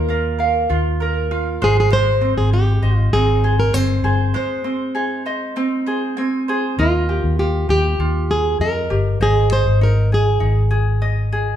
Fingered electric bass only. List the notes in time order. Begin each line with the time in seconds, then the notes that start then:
Already playing: D#2
0.70 D#2
1.62 G#1
2.37 G#1
2.82 G#1
3.12 G#1
3.74 G1
4.03 G1
6.78 D#2
7.24 D#2
7.69 D#2
7.99 D#2
8.60 F2
8.91 G1
9.20 G#1
9.66 G#1
10.41 G#1